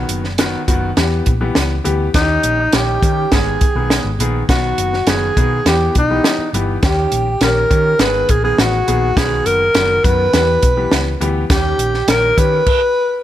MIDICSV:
0, 0, Header, 1, 6, 480
1, 0, Start_track
1, 0, Tempo, 584226
1, 1766, Time_signature, 4, 2, 24, 8
1, 10872, End_track
2, 0, Start_track
2, 0, Title_t, "Alto saxophone"
2, 0, Program_c, 0, 65
2, 1766, Note_on_c, 0, 63, 80
2, 2254, Note_on_c, 0, 67, 91
2, 2266, Note_off_c, 0, 63, 0
2, 2740, Note_on_c, 0, 68, 79
2, 2752, Note_off_c, 0, 67, 0
2, 3455, Note_off_c, 0, 68, 0
2, 3693, Note_on_c, 0, 66, 90
2, 4187, Note_on_c, 0, 68, 86
2, 4199, Note_off_c, 0, 66, 0
2, 4659, Note_off_c, 0, 68, 0
2, 4663, Note_on_c, 0, 67, 83
2, 4880, Note_off_c, 0, 67, 0
2, 4915, Note_on_c, 0, 63, 80
2, 5350, Note_off_c, 0, 63, 0
2, 5626, Note_on_c, 0, 67, 84
2, 6101, Note_on_c, 0, 70, 91
2, 6114, Note_off_c, 0, 67, 0
2, 6582, Note_on_c, 0, 71, 91
2, 6595, Note_off_c, 0, 70, 0
2, 6821, Note_on_c, 0, 68, 87
2, 6833, Note_off_c, 0, 71, 0
2, 6932, Note_off_c, 0, 68, 0
2, 6937, Note_on_c, 0, 68, 89
2, 7066, Note_on_c, 0, 66, 87
2, 7079, Note_off_c, 0, 68, 0
2, 7536, Note_on_c, 0, 68, 99
2, 7548, Note_off_c, 0, 66, 0
2, 7773, Note_on_c, 0, 70, 98
2, 7785, Note_off_c, 0, 68, 0
2, 8249, Note_on_c, 0, 71, 93
2, 8261, Note_off_c, 0, 70, 0
2, 9208, Note_off_c, 0, 71, 0
2, 9458, Note_on_c, 0, 67, 80
2, 9934, Note_on_c, 0, 70, 87
2, 9946, Note_off_c, 0, 67, 0
2, 10173, Note_on_c, 0, 71, 101
2, 10185, Note_off_c, 0, 70, 0
2, 10872, Note_off_c, 0, 71, 0
2, 10872, End_track
3, 0, Start_track
3, 0, Title_t, "Grand piano"
3, 0, Program_c, 1, 0
3, 0, Note_on_c, 1, 51, 76
3, 0, Note_on_c, 1, 59, 71
3, 0, Note_on_c, 1, 66, 84
3, 187, Note_off_c, 1, 51, 0
3, 188, Note_off_c, 1, 66, 0
3, 189, Note_off_c, 1, 59, 0
3, 320, Note_on_c, 1, 51, 87
3, 320, Note_on_c, 1, 59, 76
3, 321, Note_on_c, 1, 66, 93
3, 497, Note_off_c, 1, 51, 0
3, 497, Note_off_c, 1, 59, 0
3, 497, Note_off_c, 1, 66, 0
3, 557, Note_on_c, 1, 66, 97
3, 558, Note_on_c, 1, 51, 80
3, 558, Note_on_c, 1, 59, 70
3, 735, Note_off_c, 1, 66, 0
3, 736, Note_off_c, 1, 51, 0
3, 736, Note_off_c, 1, 59, 0
3, 795, Note_on_c, 1, 52, 69
3, 797, Note_on_c, 1, 59, 63
3, 799, Note_on_c, 1, 67, 79
3, 1062, Note_off_c, 1, 52, 0
3, 1063, Note_off_c, 1, 59, 0
3, 1064, Note_off_c, 1, 67, 0
3, 1155, Note_on_c, 1, 52, 72
3, 1158, Note_on_c, 1, 59, 72
3, 1158, Note_on_c, 1, 67, 76
3, 1423, Note_off_c, 1, 52, 0
3, 1424, Note_off_c, 1, 59, 0
3, 1424, Note_off_c, 1, 67, 0
3, 1513, Note_on_c, 1, 52, 75
3, 1516, Note_on_c, 1, 59, 72
3, 1518, Note_on_c, 1, 67, 92
3, 1695, Note_off_c, 1, 52, 0
3, 1696, Note_off_c, 1, 59, 0
3, 1697, Note_off_c, 1, 67, 0
3, 1757, Note_on_c, 1, 61, 56
3, 1758, Note_on_c, 1, 51, 64
3, 1762, Note_on_c, 1, 64, 61
3, 1814, Note_on_c, 1, 67, 79
3, 1818, Note_off_c, 1, 64, 0
3, 2112, Note_off_c, 1, 61, 0
3, 2113, Note_off_c, 1, 51, 0
3, 2140, Note_off_c, 1, 67, 0
3, 2243, Note_on_c, 1, 51, 63
3, 2244, Note_on_c, 1, 61, 62
3, 2247, Note_on_c, 1, 67, 69
3, 2420, Note_off_c, 1, 51, 0
3, 2420, Note_off_c, 1, 61, 0
3, 2422, Note_off_c, 1, 67, 0
3, 2485, Note_on_c, 1, 61, 65
3, 2485, Note_on_c, 1, 67, 73
3, 2486, Note_on_c, 1, 51, 64
3, 2661, Note_off_c, 1, 61, 0
3, 2661, Note_off_c, 1, 67, 0
3, 2662, Note_off_c, 1, 51, 0
3, 2725, Note_on_c, 1, 51, 66
3, 2727, Note_on_c, 1, 59, 49
3, 2731, Note_on_c, 1, 68, 68
3, 2989, Note_off_c, 1, 51, 0
3, 2990, Note_off_c, 1, 59, 0
3, 2992, Note_off_c, 1, 68, 0
3, 3085, Note_on_c, 1, 51, 59
3, 3087, Note_on_c, 1, 59, 55
3, 3089, Note_on_c, 1, 68, 58
3, 3349, Note_off_c, 1, 51, 0
3, 3350, Note_off_c, 1, 59, 0
3, 3351, Note_off_c, 1, 68, 0
3, 3452, Note_on_c, 1, 51, 73
3, 3452, Note_on_c, 1, 59, 67
3, 3455, Note_on_c, 1, 68, 81
3, 3625, Note_off_c, 1, 51, 0
3, 3625, Note_off_c, 1, 59, 0
3, 3627, Note_off_c, 1, 68, 0
3, 3695, Note_on_c, 1, 51, 62
3, 3696, Note_on_c, 1, 59, 62
3, 3698, Note_on_c, 1, 66, 76
3, 4042, Note_off_c, 1, 51, 0
3, 4043, Note_off_c, 1, 59, 0
3, 4044, Note_off_c, 1, 66, 0
3, 4173, Note_on_c, 1, 51, 62
3, 4174, Note_on_c, 1, 59, 62
3, 4176, Note_on_c, 1, 66, 69
3, 4347, Note_off_c, 1, 51, 0
3, 4347, Note_off_c, 1, 59, 0
3, 4348, Note_off_c, 1, 66, 0
3, 4414, Note_on_c, 1, 51, 69
3, 4415, Note_on_c, 1, 59, 58
3, 4415, Note_on_c, 1, 68, 79
3, 4587, Note_off_c, 1, 51, 0
3, 4587, Note_off_c, 1, 68, 0
3, 4588, Note_off_c, 1, 59, 0
3, 4654, Note_on_c, 1, 52, 64
3, 4654, Note_on_c, 1, 59, 53
3, 4655, Note_on_c, 1, 67, 70
3, 4914, Note_off_c, 1, 52, 0
3, 4915, Note_off_c, 1, 59, 0
3, 4915, Note_off_c, 1, 67, 0
3, 5013, Note_on_c, 1, 52, 58
3, 5014, Note_on_c, 1, 59, 50
3, 5015, Note_on_c, 1, 67, 62
3, 5274, Note_off_c, 1, 52, 0
3, 5275, Note_off_c, 1, 59, 0
3, 5275, Note_off_c, 1, 67, 0
3, 5375, Note_on_c, 1, 67, 71
3, 5376, Note_on_c, 1, 52, 67
3, 5376, Note_on_c, 1, 59, 65
3, 5548, Note_off_c, 1, 52, 0
3, 5548, Note_off_c, 1, 59, 0
3, 5548, Note_off_c, 1, 67, 0
3, 5608, Note_on_c, 1, 51, 61
3, 5611, Note_on_c, 1, 61, 57
3, 5611, Note_on_c, 1, 67, 79
3, 5959, Note_off_c, 1, 51, 0
3, 5961, Note_off_c, 1, 61, 0
3, 5961, Note_off_c, 1, 67, 0
3, 6090, Note_on_c, 1, 51, 67
3, 6090, Note_on_c, 1, 61, 61
3, 6092, Note_on_c, 1, 67, 79
3, 6265, Note_off_c, 1, 51, 0
3, 6265, Note_off_c, 1, 61, 0
3, 6267, Note_off_c, 1, 67, 0
3, 6328, Note_on_c, 1, 51, 70
3, 6328, Note_on_c, 1, 61, 69
3, 6329, Note_on_c, 1, 67, 70
3, 6504, Note_off_c, 1, 51, 0
3, 6505, Note_off_c, 1, 61, 0
3, 6505, Note_off_c, 1, 67, 0
3, 6570, Note_on_c, 1, 51, 61
3, 6570, Note_on_c, 1, 59, 56
3, 6571, Note_on_c, 1, 68, 67
3, 6833, Note_off_c, 1, 51, 0
3, 6833, Note_off_c, 1, 59, 0
3, 6834, Note_off_c, 1, 68, 0
3, 6931, Note_on_c, 1, 51, 59
3, 6932, Note_on_c, 1, 59, 55
3, 6933, Note_on_c, 1, 68, 61
3, 7193, Note_off_c, 1, 51, 0
3, 7194, Note_off_c, 1, 59, 0
3, 7194, Note_off_c, 1, 68, 0
3, 7292, Note_on_c, 1, 59, 60
3, 7293, Note_on_c, 1, 51, 63
3, 7295, Note_on_c, 1, 68, 79
3, 7466, Note_off_c, 1, 59, 0
3, 7467, Note_off_c, 1, 51, 0
3, 7468, Note_off_c, 1, 68, 0
3, 7529, Note_on_c, 1, 50, 51
3, 7530, Note_on_c, 1, 59, 61
3, 7534, Note_on_c, 1, 66, 68
3, 7584, Note_off_c, 1, 50, 0
3, 7584, Note_on_c, 1, 51, 67
3, 7880, Note_off_c, 1, 59, 0
3, 7882, Note_off_c, 1, 66, 0
3, 7907, Note_off_c, 1, 51, 0
3, 8007, Note_on_c, 1, 51, 67
3, 8010, Note_on_c, 1, 66, 78
3, 8011, Note_on_c, 1, 59, 57
3, 8183, Note_off_c, 1, 51, 0
3, 8185, Note_off_c, 1, 59, 0
3, 8185, Note_off_c, 1, 66, 0
3, 8243, Note_on_c, 1, 51, 72
3, 8246, Note_on_c, 1, 59, 60
3, 8249, Note_on_c, 1, 66, 72
3, 8421, Note_off_c, 1, 51, 0
3, 8423, Note_off_c, 1, 59, 0
3, 8424, Note_off_c, 1, 66, 0
3, 8487, Note_on_c, 1, 52, 64
3, 8487, Note_on_c, 1, 59, 50
3, 8491, Note_on_c, 1, 67, 71
3, 8751, Note_off_c, 1, 52, 0
3, 8751, Note_off_c, 1, 59, 0
3, 8752, Note_off_c, 1, 67, 0
3, 8847, Note_on_c, 1, 52, 70
3, 8847, Note_on_c, 1, 59, 58
3, 8850, Note_on_c, 1, 67, 67
3, 9110, Note_off_c, 1, 52, 0
3, 9110, Note_off_c, 1, 59, 0
3, 9112, Note_off_c, 1, 67, 0
3, 9206, Note_on_c, 1, 52, 80
3, 9211, Note_on_c, 1, 59, 76
3, 9213, Note_on_c, 1, 67, 87
3, 9382, Note_off_c, 1, 52, 0
3, 9384, Note_off_c, 1, 59, 0
3, 9385, Note_off_c, 1, 67, 0
3, 9449, Note_on_c, 1, 51, 64
3, 9449, Note_on_c, 1, 61, 58
3, 9450, Note_on_c, 1, 67, 75
3, 9797, Note_off_c, 1, 51, 0
3, 9797, Note_off_c, 1, 61, 0
3, 9798, Note_off_c, 1, 67, 0
3, 9928, Note_on_c, 1, 51, 61
3, 9931, Note_on_c, 1, 61, 63
3, 9931, Note_on_c, 1, 70, 74
3, 10102, Note_off_c, 1, 51, 0
3, 10103, Note_off_c, 1, 61, 0
3, 10104, Note_off_c, 1, 70, 0
3, 10164, Note_on_c, 1, 51, 66
3, 10168, Note_on_c, 1, 61, 58
3, 10168, Note_on_c, 1, 67, 73
3, 10339, Note_off_c, 1, 51, 0
3, 10342, Note_off_c, 1, 61, 0
3, 10342, Note_off_c, 1, 67, 0
3, 10872, End_track
4, 0, Start_track
4, 0, Title_t, "Fingered electric bass"
4, 0, Program_c, 2, 33
4, 72, Note_on_c, 2, 30, 72
4, 449, Note_off_c, 2, 30, 0
4, 557, Note_on_c, 2, 30, 80
4, 746, Note_off_c, 2, 30, 0
4, 796, Note_on_c, 2, 40, 96
4, 986, Note_off_c, 2, 40, 0
4, 1041, Note_on_c, 2, 34, 72
4, 1229, Note_off_c, 2, 34, 0
4, 1281, Note_on_c, 2, 37, 77
4, 1469, Note_off_c, 2, 37, 0
4, 1523, Note_on_c, 2, 38, 75
4, 1710, Note_off_c, 2, 38, 0
4, 1760, Note_on_c, 2, 39, 91
4, 1949, Note_off_c, 2, 39, 0
4, 2002, Note_on_c, 2, 34, 68
4, 2190, Note_off_c, 2, 34, 0
4, 2244, Note_on_c, 2, 34, 74
4, 2432, Note_off_c, 2, 34, 0
4, 2483, Note_on_c, 2, 51, 87
4, 2671, Note_off_c, 2, 51, 0
4, 2729, Note_on_c, 2, 32, 94
4, 2915, Note_off_c, 2, 32, 0
4, 3083, Note_on_c, 2, 35, 67
4, 3271, Note_off_c, 2, 35, 0
4, 3320, Note_on_c, 2, 32, 69
4, 3417, Note_off_c, 2, 32, 0
4, 3441, Note_on_c, 2, 34, 81
4, 3630, Note_off_c, 2, 34, 0
4, 3686, Note_on_c, 2, 35, 91
4, 3874, Note_off_c, 2, 35, 0
4, 3926, Note_on_c, 2, 30, 70
4, 4113, Note_off_c, 2, 30, 0
4, 4162, Note_on_c, 2, 30, 74
4, 4351, Note_off_c, 2, 30, 0
4, 4407, Note_on_c, 2, 47, 74
4, 4594, Note_off_c, 2, 47, 0
4, 4645, Note_on_c, 2, 40, 88
4, 4833, Note_off_c, 2, 40, 0
4, 4895, Note_on_c, 2, 35, 74
4, 5079, Note_off_c, 2, 35, 0
4, 5366, Note_on_c, 2, 31, 69
4, 5554, Note_off_c, 2, 31, 0
4, 5609, Note_on_c, 2, 39, 82
4, 5796, Note_off_c, 2, 39, 0
4, 5849, Note_on_c, 2, 34, 70
4, 6036, Note_off_c, 2, 34, 0
4, 6086, Note_on_c, 2, 34, 96
4, 6274, Note_off_c, 2, 34, 0
4, 6333, Note_on_c, 2, 51, 82
4, 6518, Note_off_c, 2, 51, 0
4, 6566, Note_on_c, 2, 32, 95
4, 6754, Note_off_c, 2, 32, 0
4, 6813, Note_on_c, 2, 34, 73
4, 6998, Note_off_c, 2, 34, 0
4, 7053, Note_on_c, 2, 33, 80
4, 7238, Note_off_c, 2, 33, 0
4, 7294, Note_on_c, 2, 34, 84
4, 7479, Note_off_c, 2, 34, 0
4, 7533, Note_on_c, 2, 35, 91
4, 7718, Note_off_c, 2, 35, 0
4, 7766, Note_on_c, 2, 30, 64
4, 7953, Note_off_c, 2, 30, 0
4, 8009, Note_on_c, 2, 30, 82
4, 8195, Note_off_c, 2, 30, 0
4, 8252, Note_on_c, 2, 42, 92
4, 8437, Note_off_c, 2, 42, 0
4, 8492, Note_on_c, 2, 40, 103
4, 8677, Note_off_c, 2, 40, 0
4, 8731, Note_on_c, 2, 35, 74
4, 8916, Note_off_c, 2, 35, 0
4, 8968, Note_on_c, 2, 37, 76
4, 9154, Note_off_c, 2, 37, 0
4, 9207, Note_on_c, 2, 38, 77
4, 9393, Note_off_c, 2, 38, 0
4, 9446, Note_on_c, 2, 39, 86
4, 9633, Note_off_c, 2, 39, 0
4, 9679, Note_on_c, 2, 34, 65
4, 9868, Note_off_c, 2, 34, 0
4, 9921, Note_on_c, 2, 34, 94
4, 10109, Note_off_c, 2, 34, 0
4, 10166, Note_on_c, 2, 51, 70
4, 10352, Note_off_c, 2, 51, 0
4, 10872, End_track
5, 0, Start_track
5, 0, Title_t, "Muted fingered electric bass strokes"
5, 5244, Note_on_c, 9, 29, 42
5, 5326, Note_off_c, 9, 29, 0
5, 10872, End_track
6, 0, Start_track
6, 0, Title_t, "Drums"
6, 72, Note_on_c, 9, 42, 63
6, 154, Note_off_c, 9, 42, 0
6, 197, Note_on_c, 9, 38, 28
6, 279, Note_off_c, 9, 38, 0
6, 313, Note_on_c, 9, 42, 88
6, 318, Note_on_c, 9, 38, 103
6, 395, Note_off_c, 9, 42, 0
6, 401, Note_off_c, 9, 38, 0
6, 559, Note_on_c, 9, 36, 79
6, 559, Note_on_c, 9, 42, 69
6, 641, Note_off_c, 9, 36, 0
6, 641, Note_off_c, 9, 42, 0
6, 796, Note_on_c, 9, 42, 73
6, 798, Note_on_c, 9, 38, 93
6, 878, Note_off_c, 9, 42, 0
6, 880, Note_off_c, 9, 38, 0
6, 1035, Note_on_c, 9, 42, 67
6, 1042, Note_on_c, 9, 36, 78
6, 1117, Note_off_c, 9, 42, 0
6, 1124, Note_off_c, 9, 36, 0
6, 1275, Note_on_c, 9, 38, 100
6, 1282, Note_on_c, 9, 42, 75
6, 1357, Note_off_c, 9, 38, 0
6, 1365, Note_off_c, 9, 42, 0
6, 1522, Note_on_c, 9, 42, 54
6, 1604, Note_off_c, 9, 42, 0
6, 1760, Note_on_c, 9, 42, 85
6, 1762, Note_on_c, 9, 36, 103
6, 1763, Note_on_c, 9, 38, 98
6, 1843, Note_off_c, 9, 42, 0
6, 1844, Note_off_c, 9, 36, 0
6, 1846, Note_off_c, 9, 38, 0
6, 2000, Note_on_c, 9, 42, 67
6, 2082, Note_off_c, 9, 42, 0
6, 2239, Note_on_c, 9, 42, 83
6, 2244, Note_on_c, 9, 38, 102
6, 2321, Note_off_c, 9, 42, 0
6, 2327, Note_off_c, 9, 38, 0
6, 2486, Note_on_c, 9, 36, 88
6, 2488, Note_on_c, 9, 42, 67
6, 2568, Note_off_c, 9, 36, 0
6, 2570, Note_off_c, 9, 42, 0
6, 2725, Note_on_c, 9, 42, 66
6, 2726, Note_on_c, 9, 38, 91
6, 2731, Note_on_c, 9, 36, 74
6, 2807, Note_off_c, 9, 42, 0
6, 2808, Note_off_c, 9, 38, 0
6, 2813, Note_off_c, 9, 36, 0
6, 2965, Note_on_c, 9, 42, 66
6, 2969, Note_on_c, 9, 36, 87
6, 3048, Note_off_c, 9, 42, 0
6, 3052, Note_off_c, 9, 36, 0
6, 3207, Note_on_c, 9, 38, 95
6, 3214, Note_on_c, 9, 42, 74
6, 3289, Note_off_c, 9, 38, 0
6, 3296, Note_off_c, 9, 42, 0
6, 3451, Note_on_c, 9, 42, 57
6, 3533, Note_off_c, 9, 42, 0
6, 3688, Note_on_c, 9, 36, 94
6, 3689, Note_on_c, 9, 42, 83
6, 3692, Note_on_c, 9, 38, 105
6, 3770, Note_off_c, 9, 36, 0
6, 3771, Note_off_c, 9, 42, 0
6, 3774, Note_off_c, 9, 38, 0
6, 3927, Note_on_c, 9, 42, 74
6, 4009, Note_off_c, 9, 42, 0
6, 4053, Note_on_c, 9, 38, 29
6, 4135, Note_off_c, 9, 38, 0
6, 4162, Note_on_c, 9, 42, 81
6, 4168, Note_on_c, 9, 38, 100
6, 4245, Note_off_c, 9, 42, 0
6, 4250, Note_off_c, 9, 38, 0
6, 4411, Note_on_c, 9, 36, 84
6, 4412, Note_on_c, 9, 42, 67
6, 4493, Note_off_c, 9, 36, 0
6, 4495, Note_off_c, 9, 42, 0
6, 4650, Note_on_c, 9, 42, 84
6, 4651, Note_on_c, 9, 38, 90
6, 4732, Note_off_c, 9, 42, 0
6, 4733, Note_off_c, 9, 38, 0
6, 4890, Note_on_c, 9, 42, 62
6, 4893, Note_on_c, 9, 36, 76
6, 4972, Note_off_c, 9, 42, 0
6, 4976, Note_off_c, 9, 36, 0
6, 5130, Note_on_c, 9, 38, 97
6, 5137, Note_on_c, 9, 42, 78
6, 5212, Note_off_c, 9, 38, 0
6, 5219, Note_off_c, 9, 42, 0
6, 5375, Note_on_c, 9, 42, 60
6, 5457, Note_off_c, 9, 42, 0
6, 5609, Note_on_c, 9, 42, 91
6, 5611, Note_on_c, 9, 36, 110
6, 5612, Note_on_c, 9, 38, 109
6, 5691, Note_off_c, 9, 42, 0
6, 5693, Note_off_c, 9, 36, 0
6, 5694, Note_off_c, 9, 38, 0
6, 5847, Note_on_c, 9, 42, 68
6, 5929, Note_off_c, 9, 42, 0
6, 6086, Note_on_c, 9, 42, 73
6, 6092, Note_on_c, 9, 38, 97
6, 6168, Note_off_c, 9, 42, 0
6, 6174, Note_off_c, 9, 38, 0
6, 6332, Note_on_c, 9, 36, 82
6, 6334, Note_on_c, 9, 42, 76
6, 6415, Note_off_c, 9, 36, 0
6, 6416, Note_off_c, 9, 42, 0
6, 6568, Note_on_c, 9, 42, 73
6, 6569, Note_on_c, 9, 38, 100
6, 6650, Note_off_c, 9, 42, 0
6, 6651, Note_off_c, 9, 38, 0
6, 6810, Note_on_c, 9, 42, 75
6, 6814, Note_on_c, 9, 36, 75
6, 6892, Note_off_c, 9, 42, 0
6, 6896, Note_off_c, 9, 36, 0
6, 7053, Note_on_c, 9, 38, 101
6, 7060, Note_on_c, 9, 42, 76
6, 7135, Note_off_c, 9, 38, 0
6, 7142, Note_off_c, 9, 42, 0
6, 7295, Note_on_c, 9, 42, 57
6, 7377, Note_off_c, 9, 42, 0
6, 7532, Note_on_c, 9, 36, 107
6, 7534, Note_on_c, 9, 42, 88
6, 7537, Note_on_c, 9, 38, 101
6, 7614, Note_off_c, 9, 36, 0
6, 7616, Note_off_c, 9, 42, 0
6, 7619, Note_off_c, 9, 38, 0
6, 7772, Note_on_c, 9, 42, 68
6, 7854, Note_off_c, 9, 42, 0
6, 8006, Note_on_c, 9, 42, 76
6, 8012, Note_on_c, 9, 38, 104
6, 8089, Note_off_c, 9, 42, 0
6, 8094, Note_off_c, 9, 38, 0
6, 8252, Note_on_c, 9, 36, 86
6, 8255, Note_on_c, 9, 42, 77
6, 8334, Note_off_c, 9, 36, 0
6, 8337, Note_off_c, 9, 42, 0
6, 8491, Note_on_c, 9, 42, 73
6, 8492, Note_on_c, 9, 38, 100
6, 8573, Note_off_c, 9, 42, 0
6, 8574, Note_off_c, 9, 38, 0
6, 8730, Note_on_c, 9, 42, 70
6, 8733, Note_on_c, 9, 36, 77
6, 8812, Note_off_c, 9, 42, 0
6, 8815, Note_off_c, 9, 36, 0
6, 8968, Note_on_c, 9, 38, 106
6, 8975, Note_on_c, 9, 42, 75
6, 9050, Note_off_c, 9, 38, 0
6, 9057, Note_off_c, 9, 42, 0
6, 9214, Note_on_c, 9, 42, 56
6, 9296, Note_off_c, 9, 42, 0
6, 9448, Note_on_c, 9, 42, 89
6, 9449, Note_on_c, 9, 36, 119
6, 9451, Note_on_c, 9, 38, 99
6, 9530, Note_off_c, 9, 42, 0
6, 9531, Note_off_c, 9, 36, 0
6, 9533, Note_off_c, 9, 38, 0
6, 9688, Note_on_c, 9, 42, 63
6, 9770, Note_off_c, 9, 42, 0
6, 9808, Note_on_c, 9, 38, 28
6, 9891, Note_off_c, 9, 38, 0
6, 9924, Note_on_c, 9, 42, 85
6, 9929, Note_on_c, 9, 38, 104
6, 10006, Note_off_c, 9, 42, 0
6, 10011, Note_off_c, 9, 38, 0
6, 10169, Note_on_c, 9, 36, 79
6, 10170, Note_on_c, 9, 42, 68
6, 10251, Note_off_c, 9, 36, 0
6, 10252, Note_off_c, 9, 42, 0
6, 10405, Note_on_c, 9, 49, 74
6, 10407, Note_on_c, 9, 36, 73
6, 10487, Note_off_c, 9, 49, 0
6, 10489, Note_off_c, 9, 36, 0
6, 10872, End_track
0, 0, End_of_file